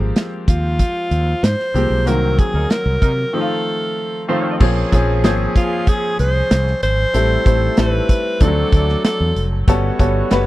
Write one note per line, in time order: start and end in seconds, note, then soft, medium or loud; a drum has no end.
0.00 0.11 G#1 medium
0.00 0.36 F3 medium
0.00 0.36 G#3 medium
0.00 0.37 A#3 medium
0.00 0.37 C4 medium
0.00 0.37 G4 medium
0.16 snare loud
0.16 closed hi-hat medium
0.48 0.80 D#2 medium
0.48 1.46 F4 loud
0.48 kick loud
0.48 closed hi-hat medium
0.79 kick medium
0.79 closed hi-hat medium
1.11 1.33 D#2 medium
1.11 closed hi-hat medium
1.43 1.54 G#2 loud
1.43 2.09 C5 loud
1.43 snare loud
1.43 closed hi-hat loud
1.59 snare soft
1.74 1.85 C2 medium
1.74 1.95 F3 medium
1.74 1.96 G#3 medium
1.74 1.96 A#3 medium
1.74 1.96 C4 medium
1.74 1.96 G4 medium
1.74 closed hi-hat medium
1.90 2.06 B1 medium
2.06 2.39 C2 loud
2.06 2.90 D#3 medium
2.06 2.91 F#3 medium
2.06 2.91 A#3 medium
2.06 2.91 C4 medium
2.06 2.91 F#4 medium
2.06 2.41 A#4 medium
2.06 closed hi-hat medium
2.39 2.72 G#4 loud
2.39 kick medium
2.39 closed hi-hat medium
2.54 2.65 D2 medium
2.54 2.68 F#3 medium
2.54 2.68 D#4 medium
2.54 2.68 A#4 medium
2.70 3.36 A#4 medium
2.70 snare loud
2.70 closed hi-hat medium
2.86 2.97 C2 loud
3.02 3.23 C3 medium
3.02 3.12 F#3 medium
3.02 3.12 D#4 medium
3.02 3.12 A#4 loud
3.02 kick loud
3.02 closed hi-hat medium
3.33 4.10 D#3 medium
3.33 4.10 F3 medium
3.33 4.10 A3 medium
3.33 4.10 C4 medium
3.33 3.40 D#4 medium
3.33 4.29 A4 medium
3.41 4.13 F4 medium
4.28 4.50 D#3 medium
4.28 4.50 F3 medium
4.28 4.50 A3 medium
4.28 4.56 A3 loud
4.28 4.50 C4 medium
4.28 4.56 F4 medium
4.28 4.50 F4 medium
4.28 4.56 C5 medium
4.60 4.82 A#1 loud
4.60 4.81 F3 medium
4.60 6.79 F3 medium
4.60 4.81 A#3 medium
4.60 4.82 C4 medium
4.60 4.82 C#4 medium
4.60 6.79 C#4 medium
4.60 6.79 G#4 loud
4.60 4.82 G#4 medium
4.60 kick loud
4.60 crash loud
4.92 5.24 A#1 loud
4.92 5.13 F3 medium
4.92 5.13 A#3 medium
4.92 5.13 C4 medium
4.92 5.13 C#4 medium
4.92 5.14 G#4 medium
4.92 kick medium
4.92 closed hi-hat medium
5.24 5.46 G#1 medium
5.24 6.08 F3 medium
5.24 6.08 A#3 medium
5.24 6.08 C4 medium
5.24 6.08 C#4 medium
5.24 6.08 G#4 loud
5.24 snare loud
5.24 closed hi-hat medium
5.56 5.91 F4 medium
5.56 kick loud
5.56 closed hi-hat medium
5.87 6.20 G#4 loud
5.87 kick loud
5.87 closed hi-hat medium
6.19 6.41 C2 medium
6.19 6.79 C5 loud
6.19 closed hi-hat medium
6.51 6.73 C2 medium
6.51 snare loud
6.51 closed hi-hat loud
6.67 snare soft
6.83 7.04 G#1 medium
6.83 7.80 C5 loud
6.83 closed hi-hat medium
7.13 7.36 A1 loud
7.13 8.07 E3 medium
7.13 7.35 G3 medium
7.13 7.35 A3 medium
7.13 7.35 C4 medium
7.13 8.07 C4 medium
7.13 7.35 E4 medium
7.13 8.07 A4 medium
7.13 7.35 A4 medium
7.13 closed hi-hat medium
7.45 7.68 A1 loud
7.45 7.67 G3 medium
7.45 7.67 A3 medium
7.45 7.67 C4 medium
7.45 7.67 E4 medium
7.45 7.67 C5 medium
7.45 kick loud
7.45 closed hi-hat medium
7.77 7.99 A1 medium
7.77 8.41 G3 medium
7.77 8.39 A3 medium
7.77 8.40 C4 medium
7.77 8.41 E4 medium
7.77 8.40 A4 medium
7.77 8.43 B4 medium
7.77 snare loud
7.77 closed hi-hat medium
8.09 kick loud
8.09 closed hi-hat medium
8.40 8.62 D2 loud
8.40 8.47 F3 medium
8.40 9.42 A3 medium
8.40 9.34 A3 medium
8.40 9.43 C4 medium
8.40 9.43 D4 medium
8.40 9.34 F#4 medium
8.40 9.04 A4 loud
8.40 9.43 A4 medium
8.40 9.34 D5 medium
8.40 kick loud
8.40 closed hi-hat loud
8.47 9.46 F#3 medium
8.72 8.94 D2 medium
8.72 kick loud
8.72 closed hi-hat medium
8.89 snare soft
9.05 9.49 A4 medium
9.05 snare loud
9.05 closed hi-hat medium
9.20 9.31 E2 medium
9.36 9.52 F1 medium
9.36 closed hi-hat medium
9.52 9.63 F#1 medium
9.68 9.89 G1 loud
9.68 9.89 G3 medium
9.68 10.46 A3 medium
9.68 9.89 B3 medium
9.68 9.89 C#4 medium
9.68 10.46 F#4 medium
9.68 9.89 F#4 medium
9.68 9.89 A4 loud
9.68 10.46 C#5 loud
9.68 kick loud
9.68 closed hi-hat medium
9.99 10.21 G1 loud
9.99 10.20 G3 medium
9.99 10.20 B3 medium
9.99 10.20 C#4 medium
9.99 10.21 F#4 medium
9.99 10.21 A4 medium
9.99 kick loud
9.99 closed hi-hat medium
10.31 10.46 F#1 medium
10.31 10.46 G3 loud
10.31 10.46 B3 medium
10.31 10.46 C#4 medium
10.31 10.46 F#4 medium
10.31 10.46 B4 loud
10.31 snare loud
10.31 closed hi-hat medium